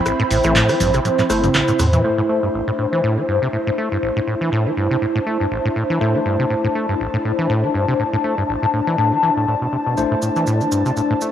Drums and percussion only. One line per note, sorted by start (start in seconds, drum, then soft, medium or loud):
0.06 cross-stick medium
0.06 closed hi-hat medium
0.06 cabasa soft
0.20 closed hi-hat soft
0.31 open hi-hat loud
0.31 cabasa medium
0.44 cross-stick soft
0.44 closed hi-hat medium
0.44 cabasa soft
0.56 clap loud
0.56 closed hi-hat medium
0.56 low conga medium
0.56 cabasa medium
0.69 cross-stick medium
0.69 open hi-hat medium
0.69 cabasa soft
0.80 open hi-hat loud
0.80 low conga medium
0.80 cabasa medium
0.94 cross-stick soft
0.94 closed hi-hat medium
0.94 cabasa soft
1.05 closed hi-hat medium
1.05 high tom medium
1.05 cabasa soft
1.19 clap soft
1.19 closed hi-hat soft
1.19 high tom medium
1.19 cabasa soft
1.30 cross-stick medium
1.30 open hi-hat loud
1.30 cabasa medium
1.44 closed hi-hat medium
1.44 mid tom medium
1.44 cabasa soft
1.54 cross-stick soft
1.54 clap loud
1.54 closed hi-hat medium
1.54 mid tom medium
1.54 cabasa medium
1.68 closed hi-hat soft
1.68 cabasa soft
1.79 cross-stick medium
1.79 mid tom loud
1.79 open hi-hat loud
1.79 cabasa medium
1.93 closed hi-hat medium
1.93 mid tom medium
1.93 cabasa soft
9.97 cabasa soft
10.22 cabasa medium
10.36 cabasa soft
10.47 cabasa medium
10.61 cabasa soft
10.72 cabasa loud
10.86 cabasa soft
10.97 cabasa medium
11.21 cabasa medium